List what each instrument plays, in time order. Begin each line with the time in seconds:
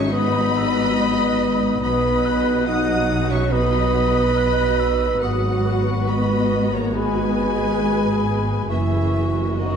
Already playing: double bass section G#1, cello section G#2, viola section F#3 D#4, french horn section C#4, trumpet section C#5, violin section E5 C#6
0.10 french horn section B3, trumpet section B4, violin section D#5 B5, flute D#6
0.56 flute E6
0.99 flute D#6
1.80 double bass section B1, cello section B2, viola section F#3 D#4, french horn section B3, trumpet section B4, violin section D#5 B5, flute D#6
2.25 flute F#6
2.66 french horn section D#4, trumpet section D#5, violin section F#5 D#6
3.30 french horn section C#4, trumpet section C#5, violin section E5 C#6
3.51 french horn section B3, trumpet section B4, violin section D#5 B5, flute D#6
4.37 flute F#6
4.80 flute E6
5.21 double bass section G#1, cello section G#2, french horn section F#3, viola section B3 F#4, trumpet section F#4, violin section B4 F#5, flute D#6
5.67 flute C#6
6.08 french horn section B3, trumpet section B4, violin section D#5 B5
6.73 french horn section A#3, trumpet section A#4, violin section C#5 A#5
6.94 french horn section G#3, trumpet section G#4, violin section B4 G#5, flute B5
7.37 flute B5
8.68 double bass section F#1, cello section F#2, french horn section E3, viola section A#3 F#4, trumpet section E4, violin section G#4 E5, flute C#6, cymbal swell
9.57 french horn section D#3, trumpet section D#4, violin section F#4 D#5